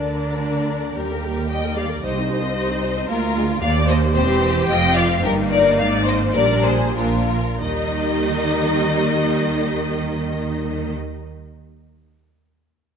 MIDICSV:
0, 0, Header, 1, 6, 480
1, 0, Start_track
1, 0, Key_signature, -3, "major"
1, 0, Tempo, 530504
1, 876, Time_signature, 2, 2, 24, 8
1, 3752, Tempo, 552486
1, 5672, Tempo, 617284
1, 6632, Tempo, 641711
1, 10654, End_track
2, 0, Start_track
2, 0, Title_t, "Violin section"
2, 0, Program_c, 0, 48
2, 0, Note_on_c, 0, 74, 69
2, 858, Note_off_c, 0, 74, 0
2, 876, Note_on_c, 0, 70, 74
2, 1354, Note_on_c, 0, 79, 79
2, 1356, Note_off_c, 0, 70, 0
2, 1591, Note_off_c, 0, 79, 0
2, 1605, Note_on_c, 0, 77, 87
2, 1678, Note_off_c, 0, 77, 0
2, 1844, Note_on_c, 0, 75, 93
2, 2779, Note_off_c, 0, 75, 0
2, 2799, Note_on_c, 0, 70, 93
2, 3266, Note_off_c, 0, 70, 0
2, 3272, Note_on_c, 0, 77, 113
2, 3344, Note_off_c, 0, 77, 0
2, 3516, Note_on_c, 0, 75, 94
2, 3589, Note_off_c, 0, 75, 0
2, 3753, Note_on_c, 0, 72, 113
2, 4212, Note_off_c, 0, 72, 0
2, 4233, Note_on_c, 0, 79, 124
2, 4458, Note_off_c, 0, 79, 0
2, 4467, Note_on_c, 0, 77, 110
2, 4698, Note_off_c, 0, 77, 0
2, 4705, Note_on_c, 0, 70, 101
2, 4775, Note_off_c, 0, 70, 0
2, 4948, Note_on_c, 0, 74, 104
2, 5177, Note_off_c, 0, 74, 0
2, 5182, Note_on_c, 0, 77, 107
2, 5251, Note_off_c, 0, 77, 0
2, 5435, Note_on_c, 0, 75, 92
2, 5504, Note_off_c, 0, 75, 0
2, 5680, Note_on_c, 0, 74, 106
2, 5901, Note_off_c, 0, 74, 0
2, 5903, Note_on_c, 0, 72, 94
2, 6138, Note_off_c, 0, 72, 0
2, 6143, Note_on_c, 0, 70, 82
2, 6626, Note_off_c, 0, 70, 0
2, 6641, Note_on_c, 0, 75, 96
2, 9125, Note_off_c, 0, 75, 0
2, 10654, End_track
3, 0, Start_track
3, 0, Title_t, "Violin section"
3, 0, Program_c, 1, 48
3, 0, Note_on_c, 1, 70, 64
3, 872, Note_off_c, 1, 70, 0
3, 881, Note_on_c, 1, 67, 65
3, 1352, Note_on_c, 1, 75, 80
3, 1359, Note_off_c, 1, 67, 0
3, 1587, Note_on_c, 1, 74, 70
3, 1595, Note_off_c, 1, 75, 0
3, 1832, Note_off_c, 1, 74, 0
3, 1840, Note_on_c, 1, 72, 79
3, 2777, Note_off_c, 1, 72, 0
3, 2800, Note_on_c, 1, 65, 83
3, 3275, Note_off_c, 1, 65, 0
3, 3281, Note_on_c, 1, 74, 104
3, 3512, Note_off_c, 1, 74, 0
3, 3520, Note_on_c, 1, 72, 87
3, 3757, Note_off_c, 1, 72, 0
3, 3769, Note_on_c, 1, 67, 96
3, 4227, Note_on_c, 1, 75, 112
3, 4229, Note_off_c, 1, 67, 0
3, 4460, Note_off_c, 1, 75, 0
3, 4462, Note_on_c, 1, 74, 86
3, 4532, Note_off_c, 1, 74, 0
3, 4699, Note_on_c, 1, 67, 84
3, 4769, Note_off_c, 1, 67, 0
3, 4946, Note_on_c, 1, 70, 87
3, 5176, Note_off_c, 1, 70, 0
3, 5187, Note_on_c, 1, 74, 104
3, 5422, Note_off_c, 1, 74, 0
3, 5426, Note_on_c, 1, 72, 87
3, 5674, Note_on_c, 1, 70, 90
3, 5675, Note_off_c, 1, 72, 0
3, 5902, Note_on_c, 1, 68, 81
3, 5903, Note_off_c, 1, 70, 0
3, 6138, Note_off_c, 1, 68, 0
3, 6140, Note_on_c, 1, 65, 73
3, 6624, Note_off_c, 1, 65, 0
3, 6641, Note_on_c, 1, 63, 83
3, 9125, Note_off_c, 1, 63, 0
3, 10654, End_track
4, 0, Start_track
4, 0, Title_t, "Viola section"
4, 0, Program_c, 2, 48
4, 0, Note_on_c, 2, 62, 68
4, 855, Note_off_c, 2, 62, 0
4, 878, Note_on_c, 2, 67, 53
4, 879, Note_on_c, 2, 55, 49
4, 989, Note_off_c, 2, 55, 0
4, 989, Note_off_c, 2, 67, 0
4, 1000, Note_on_c, 2, 70, 46
4, 1001, Note_on_c, 2, 58, 43
4, 1118, Note_off_c, 2, 70, 0
4, 1119, Note_off_c, 2, 58, 0
4, 1121, Note_on_c, 2, 55, 47
4, 1122, Note_on_c, 2, 67, 48
4, 1239, Note_off_c, 2, 55, 0
4, 1239, Note_off_c, 2, 67, 0
4, 1241, Note_on_c, 2, 70, 48
4, 1243, Note_on_c, 2, 58, 48
4, 1359, Note_off_c, 2, 70, 0
4, 1360, Note_off_c, 2, 58, 0
4, 1362, Note_on_c, 2, 67, 50
4, 1364, Note_on_c, 2, 55, 49
4, 1471, Note_off_c, 2, 67, 0
4, 1472, Note_off_c, 2, 55, 0
4, 1479, Note_on_c, 2, 58, 50
4, 1480, Note_on_c, 2, 70, 53
4, 1597, Note_on_c, 2, 67, 51
4, 1598, Note_off_c, 2, 58, 0
4, 1598, Note_off_c, 2, 70, 0
4, 1598, Note_on_c, 2, 55, 54
4, 1712, Note_on_c, 2, 58, 49
4, 1714, Note_on_c, 2, 70, 52
4, 1717, Note_off_c, 2, 55, 0
4, 1717, Note_off_c, 2, 67, 0
4, 1834, Note_on_c, 2, 63, 58
4, 1835, Note_off_c, 2, 58, 0
4, 1835, Note_off_c, 2, 70, 0
4, 1835, Note_on_c, 2, 67, 63
4, 1947, Note_off_c, 2, 63, 0
4, 1947, Note_off_c, 2, 67, 0
4, 1957, Note_on_c, 2, 60, 53
4, 1957, Note_on_c, 2, 63, 52
4, 2064, Note_off_c, 2, 63, 0
4, 2075, Note_on_c, 2, 63, 53
4, 2076, Note_on_c, 2, 67, 57
4, 2077, Note_off_c, 2, 60, 0
4, 2184, Note_off_c, 2, 63, 0
4, 2195, Note_on_c, 2, 60, 58
4, 2195, Note_on_c, 2, 63, 55
4, 2196, Note_off_c, 2, 67, 0
4, 2304, Note_off_c, 2, 63, 0
4, 2315, Note_off_c, 2, 60, 0
4, 2315, Note_on_c, 2, 63, 62
4, 2317, Note_on_c, 2, 67, 59
4, 2425, Note_off_c, 2, 63, 0
4, 2428, Note_off_c, 2, 67, 0
4, 2435, Note_on_c, 2, 63, 65
4, 2437, Note_on_c, 2, 60, 60
4, 2552, Note_off_c, 2, 63, 0
4, 2556, Note_off_c, 2, 60, 0
4, 2563, Note_on_c, 2, 63, 61
4, 2564, Note_on_c, 2, 67, 65
4, 2669, Note_off_c, 2, 63, 0
4, 2679, Note_off_c, 2, 67, 0
4, 2679, Note_on_c, 2, 60, 61
4, 2679, Note_on_c, 2, 63, 61
4, 2797, Note_off_c, 2, 60, 0
4, 2797, Note_off_c, 2, 63, 0
4, 2799, Note_on_c, 2, 65, 70
4, 2802, Note_on_c, 2, 58, 78
4, 2875, Note_off_c, 2, 58, 0
4, 3046, Note_on_c, 2, 56, 81
4, 3118, Note_off_c, 2, 56, 0
4, 3242, Note_off_c, 2, 65, 0
4, 3286, Note_on_c, 2, 58, 78
4, 3288, Note_on_c, 2, 67, 77
4, 3748, Note_off_c, 2, 67, 0
4, 3750, Note_off_c, 2, 58, 0
4, 3759, Note_on_c, 2, 67, 85
4, 3760, Note_on_c, 2, 60, 75
4, 4215, Note_off_c, 2, 67, 0
4, 4216, Note_off_c, 2, 60, 0
4, 4227, Note_on_c, 2, 65, 71
4, 4228, Note_on_c, 2, 60, 76
4, 4687, Note_off_c, 2, 60, 0
4, 4696, Note_off_c, 2, 65, 0
4, 4698, Note_on_c, 2, 58, 84
4, 4699, Note_on_c, 2, 63, 90
4, 5673, Note_on_c, 2, 55, 79
4, 5674, Note_on_c, 2, 62, 71
4, 5675, Note_off_c, 2, 58, 0
4, 5675, Note_off_c, 2, 63, 0
4, 6129, Note_off_c, 2, 55, 0
4, 6129, Note_off_c, 2, 62, 0
4, 6139, Note_on_c, 2, 53, 65
4, 6140, Note_on_c, 2, 62, 63
4, 6443, Note_off_c, 2, 62, 0
4, 6449, Note_off_c, 2, 53, 0
4, 6630, Note_on_c, 2, 55, 88
4, 6630, Note_on_c, 2, 63, 82
4, 9120, Note_off_c, 2, 55, 0
4, 9120, Note_off_c, 2, 63, 0
4, 10654, End_track
5, 0, Start_track
5, 0, Title_t, "Cello section"
5, 0, Program_c, 3, 48
5, 0, Note_on_c, 3, 50, 62
5, 858, Note_off_c, 3, 50, 0
5, 875, Note_on_c, 3, 39, 57
5, 1800, Note_off_c, 3, 39, 0
5, 1841, Note_on_c, 3, 36, 66
5, 2797, Note_off_c, 3, 36, 0
5, 2799, Note_on_c, 3, 38, 76
5, 3242, Note_off_c, 3, 38, 0
5, 3283, Note_on_c, 3, 39, 81
5, 3758, Note_off_c, 3, 39, 0
5, 3764, Note_on_c, 3, 40, 87
5, 4227, Note_off_c, 3, 40, 0
5, 4231, Note_on_c, 3, 41, 91
5, 4688, Note_off_c, 3, 41, 0
5, 4699, Note_on_c, 3, 43, 78
5, 5167, Note_off_c, 3, 43, 0
5, 5179, Note_on_c, 3, 44, 89
5, 5675, Note_off_c, 3, 44, 0
5, 5675, Note_on_c, 3, 46, 85
5, 6132, Note_off_c, 3, 46, 0
5, 6141, Note_on_c, 3, 46, 70
5, 6444, Note_off_c, 3, 46, 0
5, 6639, Note_on_c, 3, 51, 86
5, 9124, Note_off_c, 3, 51, 0
5, 10654, End_track
6, 0, Start_track
6, 0, Title_t, "Double bass section"
6, 0, Program_c, 4, 48
6, 0, Note_on_c, 4, 38, 62
6, 854, Note_off_c, 4, 38, 0
6, 878, Note_on_c, 4, 39, 55
6, 1802, Note_off_c, 4, 39, 0
6, 1839, Note_on_c, 4, 36, 64
6, 2795, Note_off_c, 4, 36, 0
6, 2796, Note_on_c, 4, 38, 75
6, 3240, Note_off_c, 4, 38, 0
6, 3276, Note_on_c, 4, 39, 85
6, 3754, Note_off_c, 4, 39, 0
6, 3759, Note_on_c, 4, 28, 77
6, 4225, Note_off_c, 4, 28, 0
6, 4226, Note_on_c, 4, 29, 89
6, 4685, Note_off_c, 4, 29, 0
6, 4698, Note_on_c, 4, 31, 82
6, 5167, Note_off_c, 4, 31, 0
6, 5176, Note_on_c, 4, 32, 92
6, 5674, Note_off_c, 4, 32, 0
6, 5676, Note_on_c, 4, 34, 78
6, 6130, Note_off_c, 4, 34, 0
6, 6140, Note_on_c, 4, 34, 69
6, 6443, Note_off_c, 4, 34, 0
6, 6635, Note_on_c, 4, 39, 88
6, 9122, Note_off_c, 4, 39, 0
6, 10654, End_track
0, 0, End_of_file